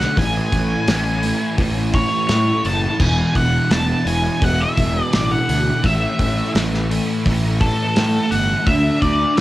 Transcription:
Already playing: D3 A3 D4 F#5
0.01 snare
0.17 A1 A2 E3 A3 G#5, kick, open hi-hat
0.52 A1, kick, open hi-hat
0.88 A1 A2 E3 A3, snare, open hi-hat
1.23 E3 A3, open hi-hat
1.58 A1 A2 E3 A3, kick, open hi-hat
1.94 C#5, kick, open hi-hat
2.28 A2 E3 A3, snare, open hi-hat
2.65 F#1 A5, open hi-hat
2.98 E1 E2 B2 E3 G#5, kick, crash
3.35 E1 F#5, kick, open hi-hat
3.70 E1 E2 B2 E3 A5, snare, open hi-hat
4.05 E1 B2 E3 G#5, open hi-hat
4.40 E1 E2 B2 E3, kick, open hi-hat
4.44 F#5
4.61 E5
4.77 E1, kick, open hi-hat
5.11 A1 E2 B2 E3 D5, snare, open hi-hat
5.31 F#5
5.49 D2, open hi-hat
5.83 A1 A2 E3 A3 E5, kick, open hi-hat
6.19 A1, kick, open hi-hat
6.54 A1 A2 E3 A3, snare, open hi-hat
6.74 snare
6.89 E3 A3, open hi-hat
7.26 A1 A2 E3 A3, kick, open hi-hat
7.61 A4, kick, open hi-hat
7.96 A2 E3 A3, snare, open hi-hat
8.31 G1 F#5, open hi-hat
8.66 D2 D3 A3 D4 E5, kick, open hi-hat
9.02 D2 D5, kick, open hi-hat
9.37 D3 F#5, open hi-hat

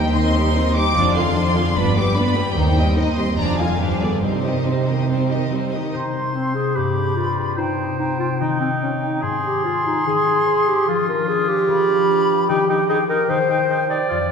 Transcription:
Already playing: D#2 D#3 G3 D#4 G4 C5 G5
0.15 D#3 C4 D#4 D#5 C6
0.35 G3 D#4 G4 C5
0.55 D#3 C4 D#4 C5 D#5
0.75 G3 D#4 G4 C5 D6
0.95 F1 F2 F3 D4 F4 D5
1.16 D3 D4 F4 G#4 F5 C6
1.35 F3 D4 F4 D5
1.55 D3 F4 G#4 F5
1.76 G1 G2 B3 D4 B4 D5 B5
1.96 G3 B3 D4 G4 B4 D6
2.16 B3 D4 B4 D5 B5
2.35 G3 B3 G4 B4
2.56 D#2 D#3 D#4 C5 G5
2.77 G3 C4 D#4 G4 D#5
2.96 D#3 D#4 C5 D#5
3.17 G3 C4 G4 D#5 C6
3.38 F1 F2 F3 D4 G#4 D5 A#5
3.58 D3 F4 D5 F5 G#5
3.79 G1 G2 F3 D4 G4 B4 F5
3.99 D3 B3 G#4 B4 D5
4.22 C2 C3 G3 C4 D#4 C5
4.44 D#3 D#4 G4 D#5
4.66 G3 C4 D#4 C5
4.88 D#3 D#4 G4 D#5
5.09 G3 C4 D#4 C5
5.30 D#3 D#4 G4 D#5
5.52 G3 C4 D#4 C5
5.72 D#3 D#4 G4 D#5
5.93 C3 D#4 C5 C6
6.15 D#4
6.34 C4 C5
6.55 G4 G#4
6.76 G2 G4 B5
6.97 D4
7.16 F4 B4
7.38 G4
7.58 C3 D#4 C5 G5
7.79 D#4
7.99 D#4 C5
8.19 F4 G4
8.41 D#3 D#4
8.60 C4 D#4
8.82 C#4 C#5
9.02 D#4 G4
9.22 G#2 G#4 C6
9.43 D#4 G4
9.64 F4 C5
9.86 D#4 G4
10.06 D#3 G#4
10.27 D#4
10.47 C5
10.67 G4
10.87 F3 F4 G#4
11.08 D4 A#4
11.27 G#4 C5
11.48 F4 G4
11.68 F3 B5
11.88 D4
12.09 B4
12.29 G4
12.48 D#3 D#4 G4 G5
12.68 D#4 G4 G5
12.88 D#4 G#4 C5 G5
13.08 D#4 G4 A#4 G5
13.27 D#3 D#4 C5 G5
13.49 D#4 G5
13.69 D#4 C5 G5
13.89 D#4 G4 D5 G5
14.09 F2 F4 D5

